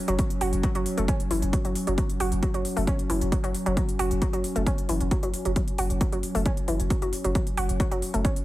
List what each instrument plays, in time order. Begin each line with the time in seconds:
Already playing: synth drone F#3 C#4
0.08 sub bass F#1, synth arpeggio sound F#3, closed hi-hat
0.19 synth arpeggio sound F#3, kick, closed hi-hat
0.30 closed hi-hat
0.41 sub bass F#1, synth arpeggio sound F#4, open hi-hat
0.53 sub bass F#1, closed hi-hat
0.63 synth arpeggio sound F#3, kick, closed hi-hat
0.75 sub bass F#1, synth arpeggio sound F#3, closed hi-hat
0.86 open hi-hat
0.98 sub bass F#1, synth arpeggio sound A3, closed hi-hat
1.08 synth arpeggio sound C#4, kick, closed hi-hat
1.20 closed hi-hat
1.31 sub bass F#1, synth arpeggio sound E3, open hi-hat
1.42 sub bass F#1, closed hi-hat
1.53 synth arpeggio sound F#3, kick, closed hi-hat
1.65 sub bass F#1, synth arpeggio sound F#3, closed hi-hat
1.75 open hi-hat
1.87 sub bass F#1, synth arpeggio sound F#3, closed hi-hat
1.98 synth arpeggio sound F#3, kick, closed hi-hat
2.10 closed hi-hat
2.20 sub bass F#1, synth arpeggio sound F#4, open hi-hat
2.32 sub bass F#1, closed hi-hat
2.43 synth arpeggio sound F#3, kick, closed hi-hat
2.54 sub bass F#1, synth arpeggio sound F#3, closed hi-hat
2.65 open hi-hat
2.77 sub bass F#1, synth arpeggio sound A3, open hi-hat
2.87 synth arpeggio sound C#4, kick, closed hi-hat
2.99 closed hi-hat
3.10 sub bass F#1, synth arpeggio sound E3, open hi-hat
3.21 sub bass F#1, closed hi-hat
3.32 synth arpeggio sound F#3, kick, closed hi-hat
3.44 sub bass F#1, synth arpeggio sound F#3, closed hi-hat
3.55 open hi-hat
3.66 sub bass F#1, synth arpeggio sound F#3, closed hi-hat
3.77 synth arpeggio sound F#3, kick, closed hi-hat
3.89 closed hi-hat
3.99 sub bass F#1, synth arpeggio sound F#4, open hi-hat
4.11 sub bass F#1, closed hi-hat
4.22 synth arpeggio sound F#3, kick, closed hi-hat
4.33 sub bass F#1, synth arpeggio sound F#3, closed hi-hat
4.44 open hi-hat
4.56 sub bass F#1, synth arpeggio sound A3, closed hi-hat
4.67 synth arpeggio sound C#4, kick, closed hi-hat
4.78 closed hi-hat
4.89 sub bass F#1, synth arpeggio sound E3, open hi-hat
5.01 sub bass F#1, closed hi-hat
5.11 synth arpeggio sound F#3, kick, closed hi-hat
5.23 sub bass F#1, synth arpeggio sound F#3, closed hi-hat
5.34 open hi-hat
5.45 sub bass F#1, synth arpeggio sound F#3, closed hi-hat
5.56 synth arpeggio sound F#3, kick, closed hi-hat
5.68 closed hi-hat
5.78 sub bass F#1, synth arpeggio sound F#4, open hi-hat
5.90 sub bass F#1, closed hi-hat
6.01 synth arpeggio sound F#3, kick, closed hi-hat
6.12 sub bass F#1, synth arpeggio sound F#3, closed hi-hat
6.23 open hi-hat
6.35 sub bass F#1, synth arpeggio sound A3, open hi-hat
6.46 synth arpeggio sound C#4, kick, closed hi-hat
6.57 closed hi-hat
6.68 sub bass F#1, synth arpeggio sound E3, open hi-hat
6.80 sub bass F#1, closed hi-hat
6.90 synth arpeggio sound F#3, kick, closed hi-hat
7.02 sub bass F#1, synth arpeggio sound F#3, closed hi-hat
7.13 open hi-hat
7.24 sub bass F#1, synth arpeggio sound F#3, closed hi-hat
7.35 synth arpeggio sound F#3, kick, closed hi-hat
7.47 closed hi-hat
7.57 sub bass F#1, synth arpeggio sound F#4, open hi-hat
7.69 sub bass F#1, closed hi-hat
7.80 synth arpeggio sound F#3, kick, closed hi-hat
7.92 sub bass F#1, synth arpeggio sound F#3, closed hi-hat
8.02 open hi-hat
8.14 sub bass F#1, synth arpeggio sound A3, closed hi-hat
8.25 synth arpeggio sound C#4, kick, closed hi-hat
8.36 closed hi-hat